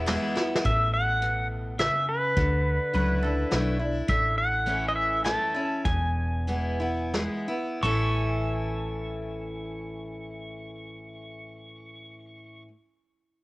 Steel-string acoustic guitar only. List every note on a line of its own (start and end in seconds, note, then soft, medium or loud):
0.06 0.35 E3 medium
0.06 0.35 G#3 medium
0.06 0.35 B3 medium
0.06 0.34 E4 loud
0.35 0.64 B3 soft
0.35 0.63 E4 medium
0.65 1.74 A2 medium
1.22 1.77 B2 medium
1.79 2.34 C#3 medium
2.37 3.46 D3 medium
2.94 3.21 F#3 medium
2.94 3.22 A3 medium
2.94 3.22 D4 medium
2.94 3.21 E4 medium
3.23 3.51 D4 soft
3.23 3.50 E4 medium
3.51 3.79 F#3 medium
3.51 3.79 A3 medium
3.51 3.79 D4 medium
3.51 3.78 E4 medium
3.79 4.08 D4 soft
3.79 4.07 E4 medium
4.08 5.19 A2 medium
4.66 5.22 E3 medium
4.66 5.22 A3 medium
4.66 5.22 C#4 soft
4.66 5.23 E4 medium
5.24 5.53 E3 medium
5.24 5.54 A3 medium
5.24 5.54 C#4 medium
5.24 5.53 E4 medium
5.55 5.85 C#4 medium
5.55 5.84 E4 medium
5.85 7.07 E2 medium
6.47 6.79 E3 soft
6.47 6.79 G#3 soft
6.47 6.79 B3 medium
6.47 6.79 E4 medium
6.80 7.13 B3 medium
6.80 7.12 E4 medium
7.14 7.46 E3 soft
7.14 7.47 G#3 medium
7.14 7.47 B3 medium
7.14 7.47 E4 medium
7.48 7.82 B3 soft
7.48 7.82 E4 medium
7.83 12.66 A2 medium
7.83 12.67 E3 medium
7.83 12.68 A3 medium
7.83 12.68 C#4 medium
7.83 12.69 E4 medium